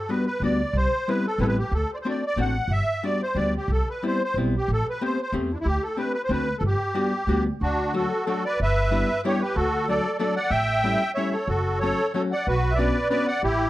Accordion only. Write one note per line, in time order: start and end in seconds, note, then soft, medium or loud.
0.00 0.10 A4 medium
0.09 0.25 B4 medium
0.27 0.42 B4 medium
0.44 0.77 D5 medium
0.77 1.09 C5 medium
1.09 1.26 B4 medium
1.27 1.40 A4 medium
1.40 1.47 A4 medium
1.40 1.44 B4 medium
1.48 1.57 B4 loud
1.59 1.73 G4 medium
1.74 1.91 A4 medium
1.94 1.96 C5 medium
1.94 1.98 D5 medium
2.02 2.07 C5 medium
2.09 2.25 D5 medium
2.27 2.40 D5 loud
2.41 2.72 F#5 medium
2.72 3.04 E5 loud
3.04 3.22 D5 medium
3.23 3.37 C5 medium
3.36 3.54 D5 medium
3.57 3.71 G4 medium
3.72 3.89 A4 medium
3.90 4.04 B4 medium
4.07 4.22 C5 medium
4.24 4.36 C5 medium
4.58 4.71 G4 medium
4.73 4.87 A4 medium
4.90 5.03 B4 medium
5.04 5.20 C5 medium
5.22 5.34 C5 medium
5.53 5.58 D4 medium
5.53 5.56 E4 medium
5.61 5.67 E4 medium
5.66 5.83 G4 medium
5.83 5.97 A4 medium
5.98 6.12 B4 medium
6.14 6.22 B4 medium
6.24 6.31 C5 medium
6.32 6.56 B4 medium
6.58 6.63 A4 medium
6.66 7.44 G4 medium
7.62 7.92 D4 medium
7.62 7.95 F#4 medium
7.95 8.26 F#4 soft
7.95 8.24 A4 medium
8.26 8.43 F#4 soft
8.26 8.44 A4 medium
8.45 8.59 B4 medium
8.45 8.60 D5 medium
8.62 9.21 B4 medium
8.62 9.21 E5 medium
9.25 9.41 G4 medium
9.25 9.42 C#5 medium
9.41 9.56 G4 medium
9.41 9.56 B4 medium
9.55 9.86 F#4 medium
9.55 9.88 A4 medium
9.89 10.17 A4 medium
9.89 10.17 D5 medium
10.18 10.35 A4 medium
10.18 10.35 D5 medium
10.36 10.50 D5 medium
10.36 10.52 F#5 medium
10.50 11.12 E5 medium
10.50 11.12 G5 loud
11.14 11.30 C#5 medium
11.14 11.34 E5 medium
11.31 11.46 A4 medium
11.31 11.48 C#5 medium
11.48 11.79 F#4 medium
11.48 11.79 A4 medium
11.80 12.12 A4 medium
11.80 12.12 C#5 medium
12.14 12.23 A4 medium
12.14 12.22 C#5 medium
12.32 12.47 D5 medium
12.32 12.47 F#5 medium
12.48 12.72 F#4 medium
12.48 12.74 B4 medium
12.71 12.78 E5 medium
12.75 13.08 B4 medium
12.75 13.08 D5 medium
13.10 13.27 B4 medium
13.10 13.26 D5 medium
13.27 13.42 D5 medium
13.27 13.42 F#5 medium
13.44 13.70 E4 medium
13.44 13.70 G4 medium